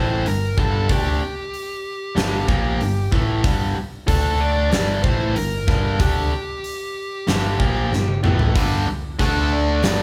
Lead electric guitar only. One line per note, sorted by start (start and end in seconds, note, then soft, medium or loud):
0.00 0.27 C5 medium
0.28 0.59 A#4 medium
0.60 0.92 A4 medium
0.92 3.10 G4 medium
4.08 4.41 A4 medium
4.40 4.70 D5 medium
4.71 5.03 D5 medium
5.03 5.37 C5 medium
5.36 6.00 A#4 medium
6.01 8.20 G4 medium
9.20 9.53 A4 medium
9.53 9.83 D5 medium
9.84 10.03 D5 medium